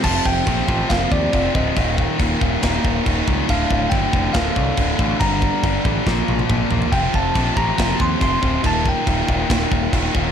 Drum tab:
CC |x---x---x---x---|x---x---x---x---|x---x---x---x---|x---x-----------|
SD |--------o-------|--------o-------|--------o-------|--------o-------|
T1 |----------------|----------------|----------------|----------oo----|
T2 |----------------|----------------|----------------|------------o---|
FT |----------------|----------------|----------------|--------------oo|
BD |o-o-o-o-o-o-o-o-|o-o-o-o-o-o-o-o-|o-o-o-o-o-o-o-o-|o-o-o-o-o---o---|

CC |x---x---x---x---|x---x---x---x---|
SD |--------o-------|--------o-------|
T1 |----------------|----------------|
T2 |----------------|----------------|
FT |----------------|----------------|
BD |o-o-o-o-o-o-o-o-|o-o-o-o-o-o-o-o-|